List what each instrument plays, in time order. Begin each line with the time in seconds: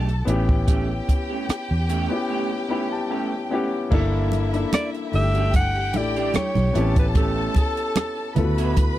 Already playing: fingered electric bass B1, grand piano A3 D4 F#4 G4, violin section A4 A5
0.09 muted clean electric guitar stroke, closed hi-hat
0.25 fingered electric bass A1, clean electric guitar A3 C#4 G4, grand piano B3 C#4 E4, violin section G4 G5, closed hi-hat
0.29 grand piano G4
0.49 muted clean electric guitar stroke, kick
0.67 clean electric guitar A3 C#4 G4, kick, closed hi-hat
0.89 muted clean electric guitar stroke
1.08 muted clean electric guitar stroke, kick, closed hi-hat
1.30 clean electric guitar A3 C#4 G4
1.49 muted fingered electric bass stroke, cross-stick, closed hi-hat
1.70 fingered electric bass E2, muted clean electric guitar stroke
1.89 clean electric guitar A3 C#4 G4, closed hi-hat
2.09 grand piano B3 C#4 E4, muted clean electric guitar stroke
2.13 grand piano G4
2.29 clean electric guitar A3 C#4 G4
2.51 muted clean electric guitar stroke
2.68 clean electric guitar A3 C#4 G4, grand piano B3 C#4 E4 G4 B5
2.92 grand piano A5, muted clean electric guitar stroke
3.10 clean electric guitar A3 C#4 G4, grand piano G5
3.32 muted clean electric guitar stroke
3.50 clean electric guitar A3 C#4 G4, grand piano B3 C#4 E4 G4 F#5
3.72 muted clean electric guitar stroke
3.91 fingered electric bass G1, grand piano A#3 D4 E4 A4, clean electric guitar A#3 E4 G4, violin section E4 E5, kick, crash
4.32 closed hi-hat, muted conga
4.53 grand piano A#3 D4 E4 A4, muted clean electric guitar stroke, closed hi-hat
4.73 alto saxophone D5, muted clean electric guitar stroke, cross-stick, closed hi-hat, high conga
4.94 muted clean electric guitar stroke, closed hi-hat
5.11 fingered electric bass G1, grand piano A3 D4 E4 G4, violin section G4 G5, alto saxophone E5, open hi-hat
5.35 clean electric guitar A3 D4 G4, closed hi-hat
5.53 alto saxophone F#5, muted clean electric guitar stroke, kick, closed hi-hat, muted conga
5.76 muted clean electric guitar stroke
5.93 fingered electric bass A1, grand piano A3 D4 E4 G4, alto saxophone D5, closed hi-hat, muted conga
6.16 clean electric guitar A3 D4 G4, closed hi-hat
6.34 alto saxophone C#5, muted fingered electric bass stroke, muted clean electric guitar stroke, cross-stick, closed hi-hat, high conga
6.55 fingered electric bass B1, cross-stick, closed hi-hat, high conga
6.73 fingered electric bass A1, clean electric guitar A3 C#4 G4, grand piano B3 C4 E4 G4, violin section A4 A5, closed hi-hat
6.81 grand piano C#4
6.96 alto saxophone B4, muted clean electric guitar stroke, kick, closed hi-hat
7.15 clean electric guitar A3 C#4 G4, alto saxophone A4, kick, closed hi-hat, muted conga
7.54 alto saxophone A4, kick, closed hi-hat, muted conga
7.77 muted clean electric guitar stroke, closed hi-hat
7.96 muted clean electric guitar stroke, cross-stick, closed hi-hat, high conga
8.17 muted clean electric guitar stroke
8.35 fingered electric bass D2, grand piano B3 E4 F4 A4, violin section B4 B5, closed hi-hat, low conga
8.44 grand piano F#4
8.58 clean electric guitar B3 E4 F#4, closed hi-hat
8.76 muted clean electric guitar stroke, kick, closed hi-hat, muted conga